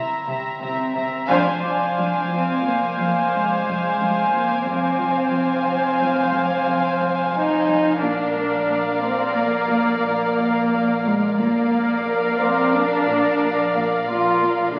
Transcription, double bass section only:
0.28 C2
0.61 C2
0.95 C2
1.28 F2
4.66 F2
8.02 A#1
11.39 A#1

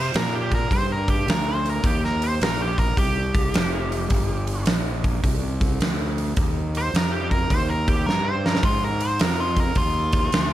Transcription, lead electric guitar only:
Already playing: C5
0.16 A#4
0.35 G4
0.55 A#4
0.73 C5
0.92 A#4
1.10 G4
1.30 A#4
1.49 C5
1.69 A#4
1.86 G4
2.05 A#4
2.24 C5
2.43 A#4
2.62 G4
2.79 A#4
2.98 G4
6.78 C5
6.96 A#4
7.12 G4
7.31 A#4
7.51 C5
7.70 A#4
7.88 G4
8.06 A#4
8.25 C5
8.46 A#4
8.65 F4
8.84 A#4
9.02 C5
9.21 A#4
9.40 F4
9.60 A#4
9.77 F4

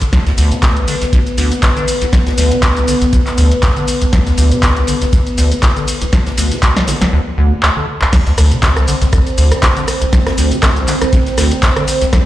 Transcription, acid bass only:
0.01 D3
0.13 D2
0.26 D2
0.38 D2
0.52 D3
0.63 D2
0.77 C2
0.88 D3
1.02 C2
1.13 D2
1.38 D2
1.52 F2
1.63 D2
1.77 D3
2.02 C2
2.13 D2
2.27 D2
2.38 D2
2.52 D3
2.63 D2
2.77 C2
2.88 D3
3.02 C2
3.13 D2
3.38 D2
3.52 F2
3.63 D2
3.77 D3
4.02 C2
4.13 D2
4.27 D2
4.38 D2
4.52 D3
4.63 D2
4.76 C2
4.88 D3
5.02 C2
5.13 D2
5.38 D2
5.52 F2
5.63 D2
5.77 D3
6.02 C2
6.13 D2
6.27 D2
6.38 D2
6.52 D3
6.63 D2
6.76 C2
6.88 D3
7.02 C2
7.13 D2
7.38 D2
7.52 F2
7.63 D2
7.77 D3
8.02 C2
8.13 D2
8.27 D2
8.38 D2
8.52 D3
8.63 D2
8.77 C2
8.88 D3
9.02 C2
9.13 D2
9.38 D2
9.52 F2
9.63 D2
9.77 D3
10.02 C2
10.13 D2
10.27 D2
10.38 D2
10.52 D3
10.63 D2
10.77 C2
10.88 D3
11.02 C2
11.13 D2
11.38 D2
11.52 F2
11.63 D2
11.76 D3
12.02 C2
12.13 D2

